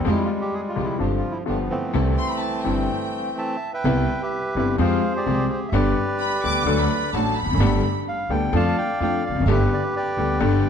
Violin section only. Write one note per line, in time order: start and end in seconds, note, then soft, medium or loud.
2.18 2.29 C6 medium
2.29 2.41 B5 medium
2.40 2.65 A5 medium
2.65 3.60 G5 medium
6.19 6.41 B5 medium
6.43 6.76 D6 loud
6.78 7.14 B5 medium
7.14 7.37 A5 medium
7.37 7.95 B5 medium